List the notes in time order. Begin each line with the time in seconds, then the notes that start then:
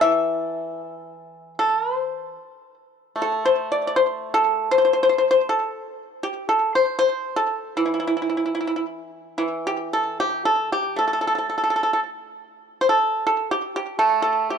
Already playing: A3
0.01 E3 E5
1.59 A4
1.95 C5
3.16 A3
3.22 A4
3.45 C5
3.72 D5
3.87 D5
3.96 C5
4.34 A4
4.71 C5
4.78 C5
4.85 C5
4.93 C5
5.03 C5
5.09 C5
5.18 C5
5.31 C5
5.49 A4
6.23 G4
6.49 A4
6.75 C5
6.99 C5
7.36 A4
7.77 E3 E4
7.86 E4
7.94 E4
8.00 E4
8.07 E4
8.17 E4
8.22 E4
8.30 E4
8.37 E4
8.46 E4
8.55 E4
8.61 E4
8.67 E4
8.76 E4
9.38 E3 E4
9.67 G4
9.93 A4
10.20 G4
10.45 A4
10.72 G4
10.96 A3 A4
11.08 A4
11.13 A4
11.21 A4
11.27 A4
11.35 A4
11.50 A4
11.58 A4
11.64 A4
11.70 A4
11.76 A4
11.83 A4
11.93 A4
12.81 C5
12.89 A4
13.27 A4
13.51 G4
13.76 G4
13.99 A3 A4
14.22 A4
14.50 G4